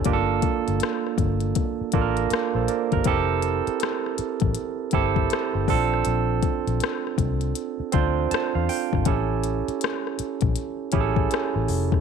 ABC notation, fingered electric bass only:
X:1
M:4/4
L:1/16
Q:"Swing 16ths" 1/4=80
K:Bblyd
V:1 name="Fingered electric bass" clef=bass
G,,,2 z G,,, z2 G,,,2 z2 A,,,2 z B,,, z G,,, | F,,,3 z4 A,,, z2 G,,,2 z G,,, B,,,2 | B,,,2 z B,,, z2 C,,2 z2 D,,2 z E,, z G,,, | A,,,3 z4 B,,, z2 A,,,2 z A,,, F,,,2 |]